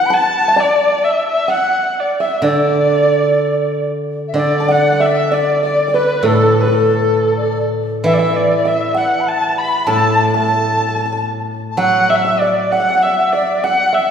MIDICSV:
0, 0, Header, 1, 5, 480
1, 0, Start_track
1, 0, Tempo, 921659
1, 302, Time_signature, 2, 2, 24, 8
1, 1265, Tempo, 961538
1, 2705, Tempo, 914634
1, 5105, Tempo, 947867
1, 6545, Tempo, 918836
1, 7265, End_track
2, 0, Start_track
2, 0, Title_t, "Kalimba"
2, 0, Program_c, 0, 108
2, 53, Note_on_c, 0, 81, 89
2, 247, Note_off_c, 0, 81, 0
2, 251, Note_on_c, 0, 76, 55
2, 294, Note_off_c, 0, 76, 0
2, 294, Note_on_c, 0, 74, 81
2, 755, Note_off_c, 0, 74, 0
2, 772, Note_on_c, 0, 78, 68
2, 1118, Note_off_c, 0, 78, 0
2, 1147, Note_on_c, 0, 76, 66
2, 1258, Note_off_c, 0, 76, 0
2, 1272, Note_on_c, 0, 74, 66
2, 1967, Note_off_c, 0, 74, 0
2, 2226, Note_on_c, 0, 74, 72
2, 2343, Note_off_c, 0, 74, 0
2, 2350, Note_on_c, 0, 81, 53
2, 2387, Note_off_c, 0, 81, 0
2, 2392, Note_on_c, 0, 78, 70
2, 2505, Note_off_c, 0, 78, 0
2, 2513, Note_on_c, 0, 78, 53
2, 2548, Note_off_c, 0, 78, 0
2, 2550, Note_on_c, 0, 76, 75
2, 2695, Note_off_c, 0, 76, 0
2, 2708, Note_on_c, 0, 74, 70
2, 2859, Note_off_c, 0, 74, 0
2, 2872, Note_on_c, 0, 74, 56
2, 2988, Note_off_c, 0, 74, 0
2, 3004, Note_on_c, 0, 74, 50
2, 3035, Note_off_c, 0, 74, 0
2, 3036, Note_on_c, 0, 71, 67
2, 3184, Note_off_c, 0, 71, 0
2, 3190, Note_on_c, 0, 69, 71
2, 3381, Note_off_c, 0, 69, 0
2, 3395, Note_on_c, 0, 71, 46
2, 3423, Note_on_c, 0, 69, 64
2, 3431, Note_off_c, 0, 71, 0
2, 3881, Note_off_c, 0, 69, 0
2, 4148, Note_on_c, 0, 76, 68
2, 4210, Note_off_c, 0, 76, 0
2, 4216, Note_on_c, 0, 76, 68
2, 4444, Note_off_c, 0, 76, 0
2, 4458, Note_on_c, 0, 76, 63
2, 4607, Note_off_c, 0, 76, 0
2, 4611, Note_on_c, 0, 78, 66
2, 5078, Note_off_c, 0, 78, 0
2, 5097, Note_on_c, 0, 81, 84
2, 5320, Note_off_c, 0, 81, 0
2, 5336, Note_on_c, 0, 81, 62
2, 5367, Note_off_c, 0, 81, 0
2, 5373, Note_on_c, 0, 81, 45
2, 5399, Note_off_c, 0, 81, 0
2, 5405, Note_on_c, 0, 81, 48
2, 5440, Note_off_c, 0, 81, 0
2, 5446, Note_on_c, 0, 81, 40
2, 5486, Note_off_c, 0, 81, 0
2, 5492, Note_on_c, 0, 81, 43
2, 5523, Note_off_c, 0, 81, 0
2, 5529, Note_on_c, 0, 81, 41
2, 5566, Note_off_c, 0, 81, 0
2, 5577, Note_on_c, 0, 81, 39
2, 5607, Note_off_c, 0, 81, 0
2, 5613, Note_on_c, 0, 81, 41
2, 5644, Note_off_c, 0, 81, 0
2, 5650, Note_on_c, 0, 81, 51
2, 5685, Note_off_c, 0, 81, 0
2, 5697, Note_on_c, 0, 81, 43
2, 5726, Note_off_c, 0, 81, 0
2, 5732, Note_on_c, 0, 81, 49
2, 5765, Note_off_c, 0, 81, 0
2, 6064, Note_on_c, 0, 78, 79
2, 6215, Note_off_c, 0, 78, 0
2, 6228, Note_on_c, 0, 76, 66
2, 6294, Note_off_c, 0, 76, 0
2, 6301, Note_on_c, 0, 76, 66
2, 6381, Note_off_c, 0, 76, 0
2, 6388, Note_on_c, 0, 74, 57
2, 6532, Note_off_c, 0, 74, 0
2, 6542, Note_on_c, 0, 78, 65
2, 6576, Note_off_c, 0, 78, 0
2, 6583, Note_on_c, 0, 78, 55
2, 6617, Note_off_c, 0, 78, 0
2, 6629, Note_on_c, 0, 78, 60
2, 6653, Note_off_c, 0, 78, 0
2, 6659, Note_on_c, 0, 78, 52
2, 6694, Note_off_c, 0, 78, 0
2, 6703, Note_on_c, 0, 78, 52
2, 6727, Note_off_c, 0, 78, 0
2, 6733, Note_on_c, 0, 78, 42
2, 6753, Note_off_c, 0, 78, 0
2, 6759, Note_on_c, 0, 78, 48
2, 6801, Note_off_c, 0, 78, 0
2, 6860, Note_on_c, 0, 74, 68
2, 7010, Note_off_c, 0, 74, 0
2, 7020, Note_on_c, 0, 78, 78
2, 7170, Note_off_c, 0, 78, 0
2, 7171, Note_on_c, 0, 76, 65
2, 7265, Note_off_c, 0, 76, 0
2, 7265, End_track
3, 0, Start_track
3, 0, Title_t, "Dizi"
3, 0, Program_c, 1, 73
3, 30, Note_on_c, 1, 83, 64
3, 69, Note_on_c, 1, 81, 83
3, 77, Note_off_c, 1, 83, 0
3, 300, Note_on_c, 1, 74, 74
3, 308, Note_off_c, 1, 81, 0
3, 540, Note_on_c, 1, 76, 72
3, 548, Note_off_c, 1, 74, 0
3, 660, Note_off_c, 1, 76, 0
3, 664, Note_on_c, 1, 76, 67
3, 779, Note_on_c, 1, 78, 79
3, 786, Note_off_c, 1, 76, 0
3, 1002, Note_off_c, 1, 78, 0
3, 1145, Note_on_c, 1, 76, 64
3, 1268, Note_on_c, 1, 74, 70
3, 1275, Note_off_c, 1, 76, 0
3, 1985, Note_off_c, 1, 74, 0
3, 2189, Note_on_c, 1, 76, 55
3, 2223, Note_on_c, 1, 74, 70
3, 2231, Note_off_c, 1, 76, 0
3, 2545, Note_off_c, 1, 74, 0
3, 2553, Note_on_c, 1, 76, 84
3, 2706, Note_on_c, 1, 74, 69
3, 2714, Note_off_c, 1, 76, 0
3, 2859, Note_off_c, 1, 74, 0
3, 2863, Note_on_c, 1, 74, 72
3, 3034, Note_on_c, 1, 71, 66
3, 3042, Note_off_c, 1, 74, 0
3, 3197, Note_on_c, 1, 69, 76
3, 3205, Note_off_c, 1, 71, 0
3, 3427, Note_off_c, 1, 69, 0
3, 3430, Note_on_c, 1, 69, 65
3, 3766, Note_off_c, 1, 69, 0
3, 3785, Note_on_c, 1, 74, 60
3, 3897, Note_off_c, 1, 74, 0
3, 4142, Note_on_c, 1, 76, 69
3, 4208, Note_off_c, 1, 76, 0
3, 4219, Note_on_c, 1, 76, 62
3, 4301, Note_on_c, 1, 74, 71
3, 4309, Note_off_c, 1, 76, 0
3, 4469, Note_on_c, 1, 76, 70
3, 4477, Note_off_c, 1, 74, 0
3, 4620, Note_on_c, 1, 78, 63
3, 4628, Note_off_c, 1, 76, 0
3, 4746, Note_on_c, 1, 83, 49
3, 4754, Note_off_c, 1, 78, 0
3, 4781, Note_on_c, 1, 81, 72
3, 4788, Note_off_c, 1, 83, 0
3, 4934, Note_off_c, 1, 81, 0
3, 4937, Note_on_c, 1, 83, 73
3, 5095, Note_on_c, 1, 81, 72
3, 5103, Note_off_c, 1, 83, 0
3, 5336, Note_off_c, 1, 81, 0
3, 5340, Note_on_c, 1, 81, 80
3, 5803, Note_off_c, 1, 81, 0
3, 6028, Note_on_c, 1, 81, 54
3, 6071, Note_on_c, 1, 78, 87
3, 6079, Note_off_c, 1, 81, 0
3, 6234, Note_on_c, 1, 76, 77
3, 6242, Note_off_c, 1, 78, 0
3, 6302, Note_off_c, 1, 76, 0
3, 6306, Note_on_c, 1, 76, 66
3, 6399, Note_on_c, 1, 74, 68
3, 6406, Note_off_c, 1, 76, 0
3, 6554, Note_on_c, 1, 78, 70
3, 6562, Note_off_c, 1, 74, 0
3, 6709, Note_on_c, 1, 76, 71
3, 6717, Note_off_c, 1, 78, 0
3, 7030, Note_on_c, 1, 78, 82
3, 7038, Note_off_c, 1, 76, 0
3, 7176, Note_off_c, 1, 78, 0
3, 7179, Note_on_c, 1, 76, 63
3, 7265, Note_off_c, 1, 76, 0
3, 7265, End_track
4, 0, Start_track
4, 0, Title_t, "Erhu"
4, 0, Program_c, 2, 110
4, 0, Note_on_c, 2, 78, 94
4, 69, Note_on_c, 2, 81, 100
4, 77, Note_off_c, 2, 78, 0
4, 311, Note_on_c, 2, 74, 91
4, 319, Note_off_c, 2, 81, 0
4, 541, Note_on_c, 2, 76, 77
4, 549, Note_off_c, 2, 74, 0
4, 661, Note_off_c, 2, 76, 0
4, 665, Note_on_c, 2, 76, 84
4, 779, Note_on_c, 2, 78, 84
4, 787, Note_off_c, 2, 76, 0
4, 1040, Note_on_c, 2, 74, 76
4, 1048, Note_off_c, 2, 78, 0
4, 1148, Note_on_c, 2, 76, 76
4, 1156, Note_off_c, 2, 74, 0
4, 1267, Note_off_c, 2, 76, 0
4, 1281, Note_on_c, 2, 74, 78
4, 1972, Note_off_c, 2, 74, 0
4, 2234, Note_on_c, 2, 74, 85
4, 2406, Note_on_c, 2, 78, 84
4, 2413, Note_off_c, 2, 74, 0
4, 2551, Note_on_c, 2, 76, 68
4, 2558, Note_off_c, 2, 78, 0
4, 2575, Note_on_c, 2, 74, 65
4, 2583, Note_off_c, 2, 76, 0
4, 2629, Note_on_c, 2, 76, 75
4, 2636, Note_off_c, 2, 74, 0
4, 2715, Note_on_c, 2, 74, 83
4, 2723, Note_off_c, 2, 76, 0
4, 2874, Note_off_c, 2, 74, 0
4, 2883, Note_on_c, 2, 74, 78
4, 3028, Note_off_c, 2, 74, 0
4, 3049, Note_on_c, 2, 71, 80
4, 3200, Note_on_c, 2, 69, 81
4, 3208, Note_off_c, 2, 71, 0
4, 3392, Note_off_c, 2, 69, 0
4, 3396, Note_on_c, 2, 71, 56
4, 3451, Note_on_c, 2, 69, 70
4, 3459, Note_off_c, 2, 71, 0
4, 3916, Note_off_c, 2, 69, 0
4, 4150, Note_on_c, 2, 76, 78
4, 4186, Note_on_c, 2, 74, 70
4, 4194, Note_off_c, 2, 76, 0
4, 4211, Note_on_c, 2, 76, 83
4, 4219, Note_off_c, 2, 74, 0
4, 4305, Note_on_c, 2, 74, 73
4, 4313, Note_off_c, 2, 76, 0
4, 4469, Note_on_c, 2, 76, 74
4, 4477, Note_off_c, 2, 74, 0
4, 4626, Note_on_c, 2, 78, 84
4, 4634, Note_off_c, 2, 76, 0
4, 4789, Note_on_c, 2, 81, 86
4, 4796, Note_off_c, 2, 78, 0
4, 4946, Note_on_c, 2, 83, 86
4, 4954, Note_off_c, 2, 81, 0
4, 5106, Note_off_c, 2, 83, 0
4, 5110, Note_on_c, 2, 81, 95
4, 5327, Note_off_c, 2, 81, 0
4, 5349, Note_on_c, 2, 81, 79
4, 5807, Note_off_c, 2, 81, 0
4, 6069, Note_on_c, 2, 78, 95
4, 6224, Note_on_c, 2, 76, 85
4, 6231, Note_off_c, 2, 78, 0
4, 6254, Note_on_c, 2, 78, 74
4, 6262, Note_off_c, 2, 76, 0
4, 6286, Note_on_c, 2, 76, 85
4, 6294, Note_off_c, 2, 78, 0
4, 6374, Note_on_c, 2, 74, 76
4, 6382, Note_off_c, 2, 76, 0
4, 6536, Note_on_c, 2, 78, 90
4, 6543, Note_off_c, 2, 74, 0
4, 6697, Note_on_c, 2, 76, 82
4, 6705, Note_off_c, 2, 78, 0
4, 6853, Note_on_c, 2, 74, 79
4, 6860, Note_off_c, 2, 76, 0
4, 7019, Note_on_c, 2, 78, 94
4, 7026, Note_off_c, 2, 74, 0
4, 7179, Note_on_c, 2, 76, 81
4, 7187, Note_off_c, 2, 78, 0
4, 7265, Note_off_c, 2, 76, 0
4, 7265, End_track
5, 0, Start_track
5, 0, Title_t, "Guzheng"
5, 0, Program_c, 3, 107
5, 0, Note_on_c, 3, 52, 53
5, 776, Note_off_c, 3, 52, 0
5, 1259, Note_on_c, 3, 50, 52
5, 2212, Note_off_c, 3, 50, 0
5, 2218, Note_on_c, 3, 50, 45
5, 3184, Note_on_c, 3, 45, 51
5, 3665, Note_off_c, 3, 50, 0
5, 4135, Note_on_c, 3, 52, 53
5, 4615, Note_off_c, 3, 45, 0
5, 5094, Note_on_c, 3, 45, 49
5, 5576, Note_off_c, 3, 52, 0
5, 6060, Note_on_c, 3, 54, 53
5, 6538, Note_off_c, 3, 45, 0
5, 7265, Note_off_c, 3, 54, 0
5, 7265, End_track
0, 0, End_of_file